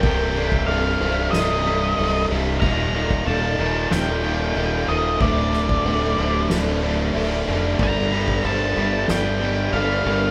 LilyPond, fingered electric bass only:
\new Staff \with { instrumentName = "Fingered electric bass" } { \clef bass \time 4/4 \key c \dorian \tempo 4 = 93 c,,4 c,,8 c,,8 c,,4 c,,8 c,,8 | ees,,4 ees,,8 ees,,8 ees,,4 ees,,8 ees,,8 | d,,4 d,,8 d,,8 d,,4 d,,8 f,,8 | g,,4 g,,8 g,,8 g,,4 g,,8 g,,8 | }